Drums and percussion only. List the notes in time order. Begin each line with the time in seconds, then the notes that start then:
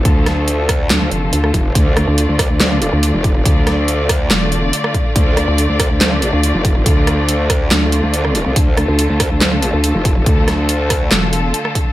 0.05 kick, closed hi-hat
0.26 cross-stick, snare, closed hi-hat
0.48 closed hi-hat
0.69 kick, cross-stick, open hi-hat
0.90 snare, clap, closed hi-hat
1.11 closed hi-hat
1.33 closed hi-hat
1.44 cross-stick
1.54 kick, closed hi-hat
1.75 kick, closed hi-hat
1.97 cross-stick, closed hi-hat
2.18 closed hi-hat
2.39 kick, cross-stick, open hi-hat
2.60 snare, clap, closed hi-hat
2.82 closed hi-hat
3.03 closed hi-hat
3.24 kick, closed hi-hat
3.46 kick, closed hi-hat
3.67 cross-stick, snare, closed hi-hat
3.88 closed hi-hat
4.09 kick, cross-stick, open hi-hat
4.31 snare, clap, closed hi-hat
4.52 closed hi-hat
4.73 closed hi-hat
4.84 cross-stick
4.94 kick, closed hi-hat
5.16 kick, closed hi-hat
5.37 cross-stick, closed hi-hat
5.58 closed hi-hat
5.80 kick, cross-stick, open hi-hat
6.01 snare, clap, closed hi-hat
6.22 closed hi-hat
6.43 closed hi-hat
6.65 kick, closed hi-hat
6.86 kick, closed hi-hat
7.07 cross-stick, closed hi-hat
7.29 closed hi-hat
7.50 kick, cross-stick, open hi-hat
7.71 snare, clap, closed hi-hat
7.92 closed hi-hat
8.14 closed hi-hat
8.25 cross-stick
8.35 closed hi-hat
8.56 kick, closed hi-hat
8.77 cross-stick, closed hi-hat
8.99 closed hi-hat
9.20 kick, cross-stick, open hi-hat
9.41 snare, clap, closed hi-hat
9.62 closed hi-hat
9.84 closed hi-hat
10.05 kick, closed hi-hat
10.26 kick, closed hi-hat
10.48 cross-stick, snare, closed hi-hat
10.69 closed hi-hat
10.90 kick, cross-stick, open hi-hat
11.11 snare, clap, closed hi-hat
11.33 closed hi-hat
11.54 closed hi-hat
11.65 cross-stick
11.75 kick, closed hi-hat